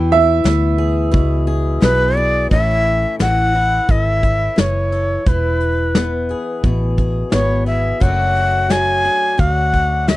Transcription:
Already playing: fingered electric bass E2, steel-string acoustic guitar E3 E4
0.12 upright piano E5
0.44 fingered electric bass D2, steel-string acoustic guitar B3, snare, open hi-hat
0.78 steel-string acoustic guitar G#4
1.11 fingered electric bass C#2, steel-string acoustic guitar B2 G#4, kick, open hi-hat
1.47 steel-string acoustic guitar G#4
1.81 fingered electric bass B1, steel-string acoustic guitar B3, shakuhachi B4, snare
2.17 steel-string acoustic guitar G#4, shakuhachi D5
2.51 fingered electric bass A1, steel-string acoustic guitar A2 E3 C#4 E4 A4, shakuhachi E5, kick, closed hi-hat
2.86 closed hi-hat
3.19 fingered electric bass A1, steel-string acoustic guitar E3, shakuhachi F#5, snare, closed hi-hat
3.55 steel-string acoustic guitar E4, closed hi-hat
3.88 fingered electric bass G#1, steel-string acoustic guitar A4, shakuhachi E5, kick, closed hi-hat
4.23 steel-string acoustic guitar E4, kick, closed hi-hat
4.56 fingered electric bass F#1, steel-string acoustic guitar E3, shakuhachi C#5, snare, closed hi-hat
4.92 steel-string acoustic guitar A4, closed hi-hat
5.26 fingered electric bass E1, steel-string acoustic guitar E3 E4, shakuhachi B4, kick, closed hi-hat
5.60 closed hi-hat
5.95 steel-string acoustic guitar B3, snare, closed hi-hat
6.29 steel-string acoustic guitar G#4, closed hi-hat
6.63 fingered electric bass A1, steel-string acoustic guitar B2 G#4, kick, closed hi-hat
6.97 steel-string acoustic guitar G#4, kick, closed hi-hat
7.31 fingered electric bass G#1, steel-string acoustic guitar B3, shakuhachi C#5, snare, closed hi-hat
7.66 steel-string acoustic guitar G#4, shakuhachi E5, closed hi-hat
8.00 fingered electric bass F#1, steel-string acoustic guitar F#2 F#3 A3 D4 F#4, shakuhachi F#5, kick, closed hi-hat
8.36 closed hi-hat
8.70 steel-string acoustic guitar F#3, shakuhachi G#5, snare, closed hi-hat
9.05 steel-string acoustic guitar D4, closed hi-hat
9.38 fingered electric bass D2, steel-string acoustic guitar F#2 F#4, shakuhachi F#5, kick, closed hi-hat
9.74 steel-string acoustic guitar D4, kick, closed hi-hat
10.08 steel-string acoustic guitar F#3, shakuhachi E5, snare, closed hi-hat

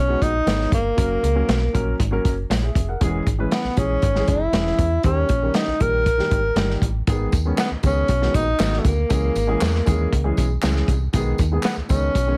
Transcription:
Already playing: fm bass B1, tenor saxophone C#4
0.08 grand piano G#3 B3 D#4 F#4
0.22 fm bass A#1, tenor saxophone D#4, kick, closed hi-hat
0.46 fm bass G#1, grand piano G#3 B3 D#4 C#5, snare, closed hi-hat
0.61 snare
0.72 fm bass G1, tenor saxophone A#3, kick, closed hi-hat
0.96 fm bass F#1, grand piano F#3 A#3 C#4 A#4, kick, closed hi-hat
1.23 fm bass C#2, closed hi-hat
1.35 grand piano F#3 A#3 C#4 A#4
1.49 fm bass B1, snare, closed hi-hat
1.73 fm bass A#1, grand piano F#3 A#3 C#4 A#4, kick, closed hi-hat
1.99 fm bass G#1, kick, closed hi-hat
2.11 grand piano F#3 A#3 C#4 A#4
2.25 fm bass F#1, kick, closed hi-hat
2.50 fm bass A#1, grand piano E4 C#5, snare, closed hi-hat
2.63 grand piano G#4 E5
2.75 fm bass F1, kick, closed hi-hat
2.89 grand piano A#4 F#5
3.01 fm bass E1, grand piano E3 G#3 C#4 G#4, kick, closed hi-hat
3.26 fm bass G#1, kick, closed hi-hat
3.38 grand piano E3 G#3 C#4 B4
3.52 tenor saxophone B3, snare, closed hi-hat
3.65 fm bass A#1, snare
3.76 fm bass A#1, grand piano E3 G#3 C#4 G#4, tenor saxophone C#4, kick, closed hi-hat
4.02 fm bass G#1, kick, closed hi-hat
4.15 grand piano E3 G#3 C#4 G#4, snare
4.28 fm bass F#1, tenor saxophone E4, kick, closed hi-hat
4.53 fm bass E1, grand piano E3 G#3 C#4 G#4, snare, closed hi-hat
4.67 snare
4.78 fm bass E2, kick, closed hi-hat
5.03 fm bass D#2, grand piano D#3 G3 A#3 G4, tenor saxophone C#4, kick, closed hi-hat
5.29 fm bass A#1, kick, closed hi-hat
5.42 grand piano D#3 G3 A#3 C#4
5.54 tenor saxophone D#4, snare, closed hi-hat
5.67 fm bass A#1, snare
5.80 fm bass A#1, grand piano D#3 G3 A#3 A#4, tenor saxophone A#4, kick, closed hi-hat
6.06 kick, closed hi-hat
6.18 grand piano D#3 G3 A#3 G4, snare
6.31 fm bass G#1, kick, closed hi-hat
6.55 fm bass G1, grand piano D#3 G3 A#3 A#4, snare, closed hi-hat
6.70 snare
6.82 fm bass A1, kick, closed hi-hat
7.07 fm bass G#1, grand piano D#3 G#3 B3 G#4, kick, closed hi-hat, tambourine
7.32 fm bass D#2, kick, closed hi-hat, tambourine
7.45 grand piano D#3 G#3 B3 C#4
7.57 tenor saxophone B3, snare, clap, closed hi-hat, tambourine
7.71 fm bass C#2
7.82 fm bass C#2, grand piano D#3 G#3 B3 G#4, tenor saxophone C#4, kick, closed hi-hat, tambourine
8.08 fm bass B1, kick, closed hi-hat
8.21 grand piano D#3 G#3 B3 F#4, snare
8.34 fm bass A#1, tenor saxophone D#4, kick, closed hi-hat, tambourine
8.59 fm bass G#1, grand piano D#3 G#3 B3 F#4, snare, clap, closed hi-hat, tambourine
8.73 snare
8.79 tenor saxophone A3
8.85 fm bass D2, tenor saxophone A#3, kick, closed hi-hat, tambourine
9.09 fm bass C#2, grand piano E3 G#3 C#4 G#4, kick, closed hi-hat, tambourine
9.35 fm bass G#1, closed hi-hat, tambourine
9.47 grand piano E3 G#3 C#4 G#4
9.61 fm bass E2, snare, clap, closed hi-hat, tambourine
9.75 snare
9.85 fm bass D#2, grand piano E3 G#3 C#4 G#4, kick, closed hi-hat, tambourine
10.13 fm bass C#2, kick, closed hi-hat
10.24 grand piano E3 G#3 C#4 G#4
10.37 fm bass B1, kick, closed hi-hat, tambourine
10.62 fm bass C#2, grand piano E3 G#3 C#4 G#4, snare, clap, closed hi-hat, tambourine
10.76 snare
10.88 fm bass C2, kick, closed hi-hat, tambourine
11.13 fm bass B1, grand piano D#3 G#3 B3 G#4, kick, closed hi-hat, tambourine
11.38 fm bass D#2, kick, closed hi-hat, tambourine
11.51 grand piano D#3 G#3 B3 G#4
11.63 tenor saxophone B3, snare, clap, closed hi-hat, tambourine
11.77 fm bass C#2
11.89 fm bass C#2, grand piano D#3 G#3 B3 D#4, tenor saxophone C#4, kick, closed hi-hat, tambourine
12.15 fm bass B1, kick, closed hi-hat, tambourine
12.27 grand piano D#3 G#3 B3 C#4

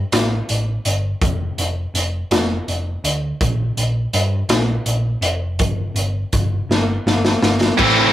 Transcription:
0.12 picked electric bass A1, snare, closed hi-hat
0.49 picked electric bass A1, closed hi-hat
0.85 picked electric bass G1, closed hi-hat
1.21 picked electric bass F1, kick, closed hi-hat
1.57 picked electric bass F1, closed hi-hat
1.94 picked electric bass F1, closed hi-hat
2.31 picked electric bass F1, snare, closed hi-hat
2.68 picked electric bass F1, closed hi-hat
3.04 picked electric bass D2, closed hi-hat
3.41 picked electric bass A#1, kick, closed hi-hat
3.77 picked electric bass A#1, closed hi-hat
4.13 picked electric bass G2, closed hi-hat
4.49 picked electric bass A#1, snare, closed hi-hat
4.86 picked electric bass A#1, closed hi-hat
5.21 picked electric bass F1, closed hi-hat
5.59 picked electric bass G1, kick, closed hi-hat
5.94 picked electric bass G1, closed hi-hat
6.33 picked electric bass G1, kick, closed hi-hat
6.69 picked electric bass G1, snare
7.06 picked electric bass G1, snare
7.25 snare
7.42 picked electric bass G1, snare
7.61 snare
7.78 picked electric bass A1, distorted electric guitar A2 E3 A3 C4 E4, kick, crash

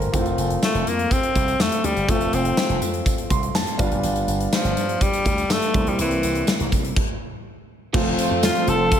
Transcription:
Already playing: grand piano A4 A#4 C5
0.02 closed hi-hat
0.12 slap bass F1, grand piano F3 A3 C4 E4, kick, closed hi-hat, tambourine
0.21 grand piano F4
0.26 closed hi-hat, tambourine
0.38 slap bass F1, closed hi-hat, tambourine
0.50 closed hi-hat
0.63 alto saxophone A3, snare, tambourine
0.74 slap bass F1, closed hi-hat
0.86 slap bass F2, alto saxophone A#3, closed hi-hat, tambourine
0.99 closed hi-hat
1.11 alto saxophone C4, kick, closed hi-hat, tambourine
1.23 closed hi-hat
1.35 slap bass C2, kick, closed hi-hat, tambourine
1.48 closed hi-hat, tambourine
1.60 slap bass F2, alto saxophone A3, snare, tambourine
1.72 closed hi-hat
1.84 slap bass D2, alto saxophone G3, closed hi-hat, tambourine
1.96 slap bass G1, closed hi-hat, tambourine
2.07 slap bass F1, grand piano F3 A3 C4 F4, alto saxophone A3, kick, closed hi-hat, tambourine
2.20 closed hi-hat, tambourine
2.33 slap bass F1, alto saxophone C4, closed hi-hat, tambourine
2.45 closed hi-hat
2.57 snare, tambourine
2.69 slap bass F1, closed hi-hat
2.81 slap bass F2, closed hi-hat, tambourine
2.94 closed hi-hat
3.06 kick, closed hi-hat, tambourine
3.18 closed hi-hat
3.30 slap bass C2, grand piano C6, kick, closed hi-hat, tambourine
3.43 closed hi-hat
3.54 slap bass F2, grand piano A5, snare, tambourine
3.67 closed hi-hat
3.78 slap bass G1, grand piano G3 B3 D4 F4 F5, kick, closed hi-hat, tambourine
3.91 slap bass F1, closed hi-hat, tambourine
4.03 slap bass G1, closed hi-hat, tambourine
4.16 closed hi-hat, tambourine
4.27 slap bass G1, closed hi-hat, tambourine
4.40 closed hi-hat
4.53 alto saxophone F3, snare, tambourine
4.64 slap bass G1, closed hi-hat
4.76 slap bass G2, closed hi-hat, tambourine
4.89 closed hi-hat
5.01 alto saxophone G3, kick, closed hi-hat, tambourine
5.13 closed hi-hat, tambourine
5.25 slap bass D2, kick, closed hi-hat, tambourine
5.37 closed hi-hat, tambourine
5.50 slap bass G2, alto saxophone A3, snare, tambourine
5.62 closed hi-hat
5.73 slap bass C2, grand piano G3 A#3 C4 E4, kick, closed hi-hat, tambourine
5.87 slap bass A#1, alto saxophone G3, closed hi-hat
5.99 slap bass C2, alto saxophone E3, closed hi-hat, tambourine
6.11 closed hi-hat
6.23 slap bass C2, closed hi-hat, tambourine
6.35 closed hi-hat
6.47 snare, tambourine
6.60 slap bass C2, closed hi-hat
6.72 slap bass C3, kick, closed hi-hat, tambourine
6.85 closed hi-hat
6.96 kick, crash
7.93 slap bass F1, overdriven electric guitar F3 C4 F4, grand piano F3 A3 C4 F4, analog polysynth A3 F4 C5, analog synth pad A4 C5 F5 C6, kick, crash, tambourine
8.06 tambourine
8.19 closed hi-hat, tambourine
8.31 slap bass F2
8.43 alto saxophone F4, snare, closed hi-hat, tambourine
8.55 closed hi-hat
8.67 slap bass F1, alto saxophone A4, closed hi-hat, tambourine
8.91 overdriven electric guitar F3 C4 F4, kick, closed hi-hat, tambourine

